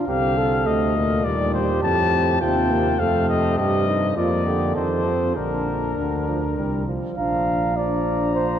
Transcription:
0.08 0.67 C2 medium
0.08 0.68 D3 soft
0.08 0.68 C4 medium
0.08 0.39 G4 medium
0.08 0.68 F5 medium
0.38 0.97 A4 medium
0.66 1.23 D2 medium
0.66 0.97 C3 medium
0.66 1.26 A3 soft
0.66 1.26 D#5 medium
0.96 1.82 A#2 medium
1.24 1.81 D#2 medium
1.24 1.66 G3 medium
1.24 2.42 G4 medium
1.24 1.53 D5 medium
1.54 1.82 C5 medium
1.83 2.40 F2 medium
1.83 2.43 A2 medium
1.83 2.40 C4 medium
1.83 2.40 A5 medium
2.41 2.99 D#2 medium
2.41 2.99 C3 medium
2.41 2.72 C4 medium
2.41 3.01 F4 medium
2.41 3.01 G5 medium
2.71 3.01 A#3 medium
2.99 3.57 F2 medium
2.99 4.18 C3 medium
2.99 3.60 A3 medium
2.99 3.57 A4 medium
2.99 3.29 F5 medium
3.29 3.58 D#5 medium
3.58 4.16 G2 soft
3.58 4.18 G3 soft
3.58 3.87 G4 medium
3.58 4.15 D#5 medium
3.88 4.15 D#4 soft
4.16 4.75 F2 soft
4.16 4.46 F3 soft
4.16 4.78 A#3 soft
4.16 4.29 F4 soft
4.16 4.75 D5 medium
4.46 4.77 D3 medium
4.46 4.76 G4 soft
4.75 5.35 F2 soft
4.75 5.07 D#3 soft
4.75 5.36 C4 soft
4.75 5.38 A4 medium
4.75 5.35 C5 medium
5.06 5.38 F3 soft
5.36 5.96 A#1 soft
5.36 5.91 D3 soft
5.36 6.88 D4 soft
5.36 6.85 D4 soft
5.36 6.84 A#4 medium
5.97 6.59 D2 soft
5.97 6.25 D3 soft
6.28 6.41 F3 soft
6.57 7.00 C2 soft
6.57 6.87 G3 soft
6.88 7.17 F3 soft
7.17 8.59 A#1 soft
7.17 7.72 F3 soft
7.17 7.72 D4 soft
7.17 7.78 F5 medium
7.17 7.73 A#5 soft
7.76 8.59 F3 medium
7.76 8.59 D4 soft
7.76 8.34 D5 medium
7.76 8.59 A#5 soft
8.35 8.59 C5 medium

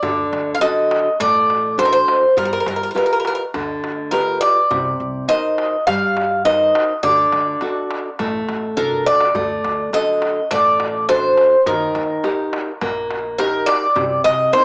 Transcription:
0.00 0.24 D2 medium
0.00 0.60 D3 medium
0.00 0.51 D5 medium
0.00 darbuka dum loud
0.18 darbuka tek soft
0.33 0.53 D2 loud
0.33 darbuka tek medium
0.55 0.61 F5 medium
0.61 1.08 D3 soft
0.61 1.08 F#4 soft
0.61 1.09 A4 medium
0.61 1.20 D#5 medium
0.61 darbuka tek medium
0.91 darbuka tek medium
1.20 2.02 A1 medium
1.20 1.77 A3 medium
1.20 1.75 D5 loud
1.20 darbuka tek medium
1.20 darbuka dum medium
1.50 darbuka tek medium
1.78 2.25 D4 soft
1.78 2.25 F#4 soft
1.78 2.26 A4 soft
1.78 1.85 C5 medium
1.78 darbuka tek medium
1.85 1.92 A#4 medium
1.93 2.34 C5 medium
2.08 darbuka tek medium
2.37 2.58 G1 medium
2.37 2.94 G3 medium
2.37 2.44 A#4 medium
2.37 darbuka dum medium
2.45 2.52 A#4 medium
2.53 2.59 A#4 medium
2.53 darbuka tek soft
2.60 2.67 A#4 medium
2.67 2.87 G1 medium
2.67 2.74 A#4 medium
2.67 darbuka tek medium
2.76 2.82 A#4 soft
2.83 2.90 A#4 soft
2.91 3.42 F4 medium
2.91 2.96 A#4 soft
2.95 3.42 G4 soft
2.95 3.04 A#4 soft
2.95 3.42 B4 medium
2.95 darbuka tek medium
3.06 3.11 A#4 soft
3.13 3.18 A#4 medium
3.20 3.26 A#4 soft
3.25 3.34 A#4 medium
3.25 darbuka tek medium
3.35 3.42 A#4 medium
3.54 4.36 D2 medium
3.54 4.11 D3 medium
3.54 darbuka tek medium
3.54 darbuka dum medium
3.84 darbuka tek medium
4.11 4.59 F4 soft
4.11 4.59 G4 soft
4.11 4.40 A#4 medium
4.11 4.59 B4 medium
4.11 darbuka tek medium
4.41 5.25 D5 medium
4.41 darbuka tek medium
4.70 4.91 C2 loud
4.70 5.27 C3 medium
4.70 darbuka dum medium
4.86 darbuka tek soft
5.00 5.20 C2 medium
5.28 5.75 D#4 soft
5.28 5.75 A#4 soft
5.28 5.75 C5 medium
5.28 5.86 D#5 loud
5.28 darbuka tek medium
5.58 darbuka tek medium
5.87 6.69 G2 medium
5.87 6.44 G3 medium
5.87 6.45 F5 loud
5.87 darbuka tek medium
5.87 darbuka dum medium
6.17 darbuka tek medium
6.45 6.92 D#4 medium
6.45 6.92 A#4 soft
6.45 6.92 C5 medium
6.45 7.03 D#5 medium
6.45 darbuka tek medium
6.75 darbuka tek medium
7.03 7.24 D2 medium
7.03 7.60 D3 medium
7.03 8.16 D5 medium
7.03 darbuka dum loud
7.19 darbuka tek soft
7.32 7.53 D2 medium
7.32 darbuka tek medium
7.47 darbuka tek soft
7.61 8.08 D4 soft
7.61 8.08 F#4 soft
7.61 8.09 A4 medium
7.61 darbuka tek medium
7.76 darbuka tek soft
7.91 darbuka tek medium
8.06 darbuka tek soft
8.19 8.40 A1 medium
8.19 8.76 A3 medium
8.19 darbuka tek medium
8.19 darbuka dum medium
8.49 8.75 A1 medium
8.49 darbuka tek medium
8.77 9.04 C2 medium
8.77 9.24 D4 soft
8.77 9.24 F#4 soft
8.77 9.24 A4 medium
8.77 9.04 A#4 medium
8.77 darbuka dum medium
8.92 darbuka dum medium
9.06 9.33 D2 medium
9.06 9.94 D5 loud
9.06 darbuka tek medium
9.21 darbuka tek medium
9.35 9.56 D2 medium
9.35 9.92 A3 medium
9.35 darbuka dum loud
9.50 darbuka tek soft
9.65 9.85 D2 medium
9.65 darbuka tek medium
9.93 10.39 D3 medium
9.93 10.40 F#4 soft
9.93 10.40 A4 medium
9.93 10.51 D#5 loud
9.93 darbuka tek medium
10.22 darbuka tek medium
10.51 11.32 A1 medium
10.51 11.07 A3 medium
10.51 11.05 D5 medium
10.51 darbuka tek medium
10.51 darbuka dum medium
10.80 darbuka tek medium
11.09 11.55 D4 soft
11.09 11.55 F#4 soft
11.09 11.55 A4 medium
11.09 11.68 C5 medium
11.09 darbuka tek medium
11.37 darbuka tek medium
11.66 11.87 D#2 loud
11.66 12.23 D#3 medium
11.66 12.78 A#4 medium
11.66 darbuka dum loud
11.81 darbuka tek soft
11.95 12.16 D#2 medium
11.95 darbuka tek medium
12.23 12.70 D#4 soft
12.23 12.70 G4 soft
12.23 12.71 A#4 medium
12.23 darbuka tek medium
12.53 darbuka tek medium
12.81 13.62 A#1 medium
12.81 13.37 A#3 medium
12.81 darbuka tek medium
12.81 darbuka dum medium
13.11 darbuka tek medium
13.38 13.85 D#4 medium
13.38 13.85 G4 soft
13.38 13.69 A#4 medium
13.38 13.85 A#4 medium
13.38 darbuka tek medium
13.66 14.21 D5 loud
13.66 darbuka tek medium
13.96 14.17 C2 medium
13.96 14.52 C3 medium
13.96 darbuka dum loud
14.11 darbuka tek soft
14.24 14.45 C2 medium
14.24 14.53 D#5 loud
14.24 darbuka tek medium
14.53 14.64 A#3 soft
14.53 14.64 C4 soft
14.53 14.64 D#4 medium
14.53 14.64 C5 medium
14.53 darbuka tek medium

